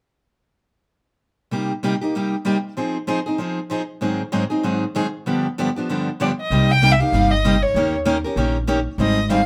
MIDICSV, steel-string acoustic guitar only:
0, 0, Header, 1, 2, 480
1, 0, Start_track
1, 0, Key_signature, -3, "minor"
1, 0, Tempo, 311526
1, 2336, Time_signature, 4, 2, 24, 8
1, 14573, End_track
2, 0, Start_track
2, 0, Title_t, "Steel-string acoustic guitar"
2, 0, Program_c, 0, 25
2, 2332, Note_on_c, 0, 48, 53
2, 2334, Note_on_c, 0, 55, 48
2, 2345, Note_on_c, 0, 58, 53
2, 2356, Note_on_c, 0, 63, 52
2, 2358, Note_on_c, 0, 67, 58
2, 2635, Note_off_c, 0, 48, 0
2, 2637, Note_off_c, 0, 55, 0
2, 2642, Note_off_c, 0, 58, 0
2, 2647, Note_off_c, 0, 63, 0
2, 2648, Note_off_c, 0, 67, 0
2, 2819, Note_on_c, 0, 48, 61
2, 2828, Note_on_c, 0, 55, 68
2, 2830, Note_on_c, 0, 58, 69
2, 2837, Note_on_c, 0, 63, 67
2, 2842, Note_on_c, 0, 67, 75
2, 2982, Note_off_c, 0, 48, 0
2, 2987, Note_off_c, 0, 55, 0
2, 2988, Note_off_c, 0, 58, 0
2, 2991, Note_off_c, 0, 63, 0
2, 2993, Note_off_c, 0, 67, 0
2, 3103, Note_on_c, 0, 67, 43
2, 3123, Note_on_c, 0, 63, 41
2, 3141, Note_on_c, 0, 58, 37
2, 3293, Note_off_c, 0, 67, 0
2, 3303, Note_off_c, 0, 63, 0
2, 3306, Note_off_c, 0, 58, 0
2, 3314, Note_on_c, 0, 48, 53
2, 3323, Note_on_c, 0, 55, 50
2, 3325, Note_on_c, 0, 58, 58
2, 3335, Note_on_c, 0, 63, 61
2, 3338, Note_on_c, 0, 67, 56
2, 3608, Note_off_c, 0, 48, 0
2, 3613, Note_off_c, 0, 55, 0
2, 3614, Note_off_c, 0, 58, 0
2, 3619, Note_off_c, 0, 63, 0
2, 3620, Note_off_c, 0, 67, 0
2, 3770, Note_on_c, 0, 48, 65
2, 3776, Note_on_c, 0, 55, 69
2, 3783, Note_on_c, 0, 58, 69
2, 3791, Note_on_c, 0, 63, 76
2, 3795, Note_on_c, 0, 67, 75
2, 3940, Note_off_c, 0, 48, 0
2, 3942, Note_off_c, 0, 55, 0
2, 3946, Note_off_c, 0, 58, 0
2, 3950, Note_off_c, 0, 63, 0
2, 3952, Note_off_c, 0, 67, 0
2, 4263, Note_on_c, 0, 53, 55
2, 4272, Note_on_c, 0, 60, 56
2, 4283, Note_on_c, 0, 63, 53
2, 4284, Note_on_c, 0, 68, 52
2, 4564, Note_off_c, 0, 53, 0
2, 4569, Note_off_c, 0, 60, 0
2, 4574, Note_off_c, 0, 63, 0
2, 4575, Note_off_c, 0, 68, 0
2, 4733, Note_on_c, 0, 53, 68
2, 4742, Note_on_c, 0, 60, 74
2, 4749, Note_on_c, 0, 68, 82
2, 4752, Note_on_c, 0, 63, 76
2, 4902, Note_off_c, 0, 53, 0
2, 4907, Note_off_c, 0, 60, 0
2, 4911, Note_off_c, 0, 68, 0
2, 4912, Note_off_c, 0, 63, 0
2, 5023, Note_on_c, 0, 68, 46
2, 5044, Note_on_c, 0, 63, 41
2, 5055, Note_on_c, 0, 60, 37
2, 5210, Note_off_c, 0, 60, 0
2, 5213, Note_on_c, 0, 53, 52
2, 5216, Note_off_c, 0, 68, 0
2, 5217, Note_off_c, 0, 63, 0
2, 5229, Note_on_c, 0, 60, 58
2, 5236, Note_on_c, 0, 63, 51
2, 5245, Note_on_c, 0, 68, 62
2, 5520, Note_off_c, 0, 53, 0
2, 5528, Note_off_c, 0, 60, 0
2, 5532, Note_off_c, 0, 63, 0
2, 5536, Note_off_c, 0, 68, 0
2, 5696, Note_on_c, 0, 53, 63
2, 5711, Note_on_c, 0, 60, 70
2, 5714, Note_on_c, 0, 63, 74
2, 5725, Note_on_c, 0, 68, 76
2, 5865, Note_off_c, 0, 53, 0
2, 5872, Note_off_c, 0, 60, 0
2, 5874, Note_off_c, 0, 63, 0
2, 5879, Note_off_c, 0, 68, 0
2, 6176, Note_on_c, 0, 44, 52
2, 6184, Note_on_c, 0, 51, 53
2, 6192, Note_on_c, 0, 54, 53
2, 6192, Note_on_c, 0, 60, 55
2, 6194, Note_on_c, 0, 63, 60
2, 6198, Note_on_c, 0, 68, 65
2, 6482, Note_off_c, 0, 44, 0
2, 6486, Note_off_c, 0, 51, 0
2, 6490, Note_off_c, 0, 60, 0
2, 6491, Note_off_c, 0, 54, 0
2, 6492, Note_off_c, 0, 63, 0
2, 6493, Note_off_c, 0, 68, 0
2, 6656, Note_on_c, 0, 51, 68
2, 6657, Note_on_c, 0, 44, 63
2, 6661, Note_on_c, 0, 54, 70
2, 6666, Note_on_c, 0, 63, 76
2, 6669, Note_on_c, 0, 60, 73
2, 6671, Note_on_c, 0, 68, 76
2, 6825, Note_off_c, 0, 51, 0
2, 6826, Note_off_c, 0, 44, 0
2, 6828, Note_off_c, 0, 54, 0
2, 6831, Note_off_c, 0, 63, 0
2, 6832, Note_off_c, 0, 60, 0
2, 6833, Note_off_c, 0, 68, 0
2, 6932, Note_on_c, 0, 68, 46
2, 6942, Note_on_c, 0, 63, 46
2, 6955, Note_on_c, 0, 60, 46
2, 6962, Note_on_c, 0, 54, 39
2, 7131, Note_off_c, 0, 68, 0
2, 7135, Note_off_c, 0, 60, 0
2, 7136, Note_off_c, 0, 54, 0
2, 7136, Note_off_c, 0, 63, 0
2, 7139, Note_on_c, 0, 44, 54
2, 7145, Note_on_c, 0, 51, 56
2, 7154, Note_on_c, 0, 60, 54
2, 7155, Note_on_c, 0, 54, 51
2, 7157, Note_on_c, 0, 63, 55
2, 7157, Note_on_c, 0, 68, 57
2, 7444, Note_off_c, 0, 44, 0
2, 7447, Note_off_c, 0, 51, 0
2, 7452, Note_off_c, 0, 54, 0
2, 7452, Note_off_c, 0, 60, 0
2, 7453, Note_off_c, 0, 63, 0
2, 7453, Note_off_c, 0, 68, 0
2, 7623, Note_on_c, 0, 44, 70
2, 7633, Note_on_c, 0, 51, 72
2, 7636, Note_on_c, 0, 60, 69
2, 7637, Note_on_c, 0, 54, 66
2, 7639, Note_on_c, 0, 63, 77
2, 7645, Note_on_c, 0, 68, 80
2, 7789, Note_off_c, 0, 44, 0
2, 7794, Note_off_c, 0, 51, 0
2, 7795, Note_off_c, 0, 60, 0
2, 7796, Note_off_c, 0, 54, 0
2, 7797, Note_off_c, 0, 63, 0
2, 7800, Note_off_c, 0, 68, 0
2, 8104, Note_on_c, 0, 43, 52
2, 8108, Note_on_c, 0, 50, 53
2, 8117, Note_on_c, 0, 53, 55
2, 8120, Note_on_c, 0, 59, 58
2, 8123, Note_on_c, 0, 62, 62
2, 8131, Note_on_c, 0, 67, 60
2, 8406, Note_off_c, 0, 43, 0
2, 8408, Note_off_c, 0, 50, 0
2, 8413, Note_off_c, 0, 53, 0
2, 8414, Note_off_c, 0, 59, 0
2, 8416, Note_off_c, 0, 62, 0
2, 8420, Note_off_c, 0, 67, 0
2, 8600, Note_on_c, 0, 43, 66
2, 8604, Note_on_c, 0, 50, 75
2, 8609, Note_on_c, 0, 53, 69
2, 8615, Note_on_c, 0, 59, 74
2, 8621, Note_on_c, 0, 67, 76
2, 8622, Note_on_c, 0, 62, 75
2, 8757, Note_off_c, 0, 43, 0
2, 8759, Note_off_c, 0, 50, 0
2, 8761, Note_off_c, 0, 53, 0
2, 8765, Note_off_c, 0, 59, 0
2, 8767, Note_off_c, 0, 67, 0
2, 8768, Note_off_c, 0, 62, 0
2, 8880, Note_on_c, 0, 67, 47
2, 8897, Note_on_c, 0, 59, 38
2, 8899, Note_on_c, 0, 62, 44
2, 8915, Note_on_c, 0, 53, 43
2, 9064, Note_off_c, 0, 67, 0
2, 9071, Note_off_c, 0, 53, 0
2, 9073, Note_off_c, 0, 59, 0
2, 9074, Note_off_c, 0, 62, 0
2, 9080, Note_on_c, 0, 43, 52
2, 9085, Note_on_c, 0, 50, 56
2, 9089, Note_on_c, 0, 53, 53
2, 9094, Note_on_c, 0, 59, 55
2, 9098, Note_on_c, 0, 62, 60
2, 9104, Note_on_c, 0, 67, 56
2, 9373, Note_off_c, 0, 43, 0
2, 9375, Note_off_c, 0, 50, 0
2, 9378, Note_off_c, 0, 53, 0
2, 9380, Note_off_c, 0, 59, 0
2, 9382, Note_off_c, 0, 62, 0
2, 9385, Note_off_c, 0, 67, 0
2, 9549, Note_on_c, 0, 43, 70
2, 9556, Note_on_c, 0, 50, 73
2, 9565, Note_on_c, 0, 59, 75
2, 9567, Note_on_c, 0, 53, 72
2, 9569, Note_on_c, 0, 62, 76
2, 9572, Note_on_c, 0, 67, 74
2, 9710, Note_off_c, 0, 43, 0
2, 9714, Note_off_c, 0, 50, 0
2, 9718, Note_off_c, 0, 59, 0
2, 9719, Note_off_c, 0, 53, 0
2, 9720, Note_off_c, 0, 62, 0
2, 9722, Note_off_c, 0, 67, 0
2, 10032, Note_on_c, 0, 48, 56
2, 10039, Note_on_c, 0, 55, 59
2, 10043, Note_on_c, 0, 58, 65
2, 10047, Note_on_c, 0, 63, 61
2, 10055, Note_on_c, 0, 67, 65
2, 10327, Note_off_c, 0, 48, 0
2, 10331, Note_off_c, 0, 55, 0
2, 10333, Note_off_c, 0, 58, 0
2, 10335, Note_off_c, 0, 63, 0
2, 10339, Note_off_c, 0, 67, 0
2, 10509, Note_on_c, 0, 48, 75
2, 10520, Note_on_c, 0, 55, 82
2, 10521, Note_on_c, 0, 58, 81
2, 10529, Note_on_c, 0, 63, 83
2, 10531, Note_on_c, 0, 67, 86
2, 10668, Note_off_c, 0, 48, 0
2, 10674, Note_off_c, 0, 55, 0
2, 10674, Note_off_c, 0, 58, 0
2, 10678, Note_off_c, 0, 63, 0
2, 10679, Note_off_c, 0, 67, 0
2, 10789, Note_on_c, 0, 67, 53
2, 10803, Note_on_c, 0, 63, 41
2, 10816, Note_on_c, 0, 58, 41
2, 10976, Note_off_c, 0, 67, 0
2, 10983, Note_off_c, 0, 58, 0
2, 10983, Note_off_c, 0, 63, 0
2, 10990, Note_on_c, 0, 48, 55
2, 11001, Note_on_c, 0, 55, 59
2, 11001, Note_on_c, 0, 58, 57
2, 11004, Note_on_c, 0, 63, 69
2, 11015, Note_on_c, 0, 67, 67
2, 11284, Note_off_c, 0, 48, 0
2, 11290, Note_off_c, 0, 55, 0
2, 11290, Note_off_c, 0, 58, 0
2, 11291, Note_off_c, 0, 63, 0
2, 11297, Note_off_c, 0, 67, 0
2, 11472, Note_on_c, 0, 48, 75
2, 11477, Note_on_c, 0, 55, 83
2, 11481, Note_on_c, 0, 63, 82
2, 11484, Note_on_c, 0, 58, 78
2, 11497, Note_on_c, 0, 67, 79
2, 11628, Note_off_c, 0, 48, 0
2, 11630, Note_off_c, 0, 55, 0
2, 11632, Note_off_c, 0, 63, 0
2, 11634, Note_off_c, 0, 58, 0
2, 11640, Note_off_c, 0, 67, 0
2, 11957, Note_on_c, 0, 51, 61
2, 11964, Note_on_c, 0, 58, 65
2, 11964, Note_on_c, 0, 61, 64
2, 11975, Note_on_c, 0, 67, 65
2, 11982, Note_on_c, 0, 70, 66
2, 12246, Note_off_c, 0, 51, 0
2, 12249, Note_off_c, 0, 58, 0
2, 12249, Note_off_c, 0, 61, 0
2, 12255, Note_off_c, 0, 67, 0
2, 12258, Note_off_c, 0, 70, 0
2, 12410, Note_on_c, 0, 58, 82
2, 12411, Note_on_c, 0, 51, 76
2, 12414, Note_on_c, 0, 61, 77
2, 12423, Note_on_c, 0, 67, 85
2, 12425, Note_on_c, 0, 70, 89
2, 12574, Note_off_c, 0, 58, 0
2, 12575, Note_off_c, 0, 51, 0
2, 12576, Note_off_c, 0, 61, 0
2, 12581, Note_off_c, 0, 67, 0
2, 12582, Note_off_c, 0, 70, 0
2, 12702, Note_on_c, 0, 70, 51
2, 12719, Note_on_c, 0, 67, 47
2, 12735, Note_on_c, 0, 61, 44
2, 12887, Note_off_c, 0, 61, 0
2, 12887, Note_off_c, 0, 70, 0
2, 12891, Note_off_c, 0, 67, 0
2, 12898, Note_on_c, 0, 51, 54
2, 12900, Note_on_c, 0, 58, 65
2, 12906, Note_on_c, 0, 61, 60
2, 12909, Note_on_c, 0, 67, 66
2, 12918, Note_on_c, 0, 70, 64
2, 13193, Note_off_c, 0, 51, 0
2, 13194, Note_off_c, 0, 58, 0
2, 13197, Note_off_c, 0, 61, 0
2, 13199, Note_off_c, 0, 67, 0
2, 13203, Note_off_c, 0, 70, 0
2, 13365, Note_on_c, 0, 51, 74
2, 13369, Note_on_c, 0, 58, 72
2, 13376, Note_on_c, 0, 61, 87
2, 13382, Note_on_c, 0, 67, 91
2, 13389, Note_on_c, 0, 70, 83
2, 13529, Note_off_c, 0, 51, 0
2, 13531, Note_off_c, 0, 58, 0
2, 13535, Note_off_c, 0, 61, 0
2, 13538, Note_off_c, 0, 67, 0
2, 13541, Note_off_c, 0, 70, 0
2, 13851, Note_on_c, 0, 51, 57
2, 13862, Note_on_c, 0, 60, 67
2, 13866, Note_on_c, 0, 55, 60
2, 13875, Note_on_c, 0, 63, 59
2, 13882, Note_on_c, 0, 68, 67
2, 14148, Note_off_c, 0, 51, 0
2, 14153, Note_off_c, 0, 60, 0
2, 14155, Note_off_c, 0, 55, 0
2, 14159, Note_off_c, 0, 63, 0
2, 14163, Note_off_c, 0, 68, 0
2, 14326, Note_on_c, 0, 51, 74
2, 14331, Note_on_c, 0, 55, 86
2, 14339, Note_on_c, 0, 60, 79
2, 14342, Note_on_c, 0, 63, 83
2, 14347, Note_on_c, 0, 68, 87
2, 14487, Note_off_c, 0, 51, 0
2, 14489, Note_off_c, 0, 55, 0
2, 14493, Note_off_c, 0, 60, 0
2, 14495, Note_off_c, 0, 63, 0
2, 14498, Note_off_c, 0, 68, 0
2, 14573, End_track
0, 0, End_of_file